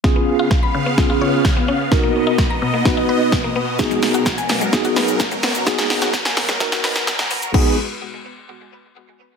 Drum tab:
CC |----------------|----------------|----------------|----------------|
HH |----------------|----------------|xxoxxxoxxxoxxxox|xxoxxxoxxxo-xxox|
SH |----------------|----------------|xxxxxxxxxxxxxxxx|xxxxxxxxxxxxxxxx|
SD |o---o---o---o---|o---o---o---o---|o-o-o-o-o-o-o-o-|oooooooooooooo--|
BD |o---o---o---o---|o---o---o---o---|o---o---o---o---|o---o---o-------|

CC |x---------------|
HH |----------------|
SH |----------------|
SD |----------------|
BD |o---------------|